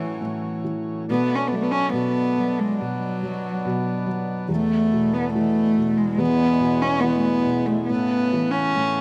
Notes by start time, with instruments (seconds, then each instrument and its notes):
Already playing: felt piano A2 E3, harmonium A2 F#3 C#4, cello E3
0.21 felt piano A2
0.64 felt piano E3
1.08 harmonium B2 A3 D4, felt piano B2, cello B3
1.35 cello C#4
1.48 cello B3
1.52 felt piano F#3, cello A3
1.63 cello B3
1.72 cello C#4
1.93 felt piano B2, cello B3
2.38 felt piano F#3
2.60 cello G#3
2.79 felt piano B2, cello F#3, harmonium B3
3.23 felt piano F#3
3.65 felt piano B2
4.07 felt piano F#3
4.49 felt piano E2, harmonium E2 B2 A3, cello A3
4.92 felt piano B2
5.14 cello B3
5.33 felt piano E3, cello A3
5.78 felt piano B2
5.97 cello G#3
6.18 felt piano E2, cello B3
6.22 harmonium E2 G#3
6.60 felt piano B2
6.82 cello C#4
7.00 felt piano E3, cello B3
7.14 cello A3 B3
7.46 felt piano B2
7.66 cello A3
7.87 felt piano A2, cello B3
7.91 harmonium C#3 A3 B3
8.33 felt piano E3
8.51 cello C#4
8.76 felt piano A2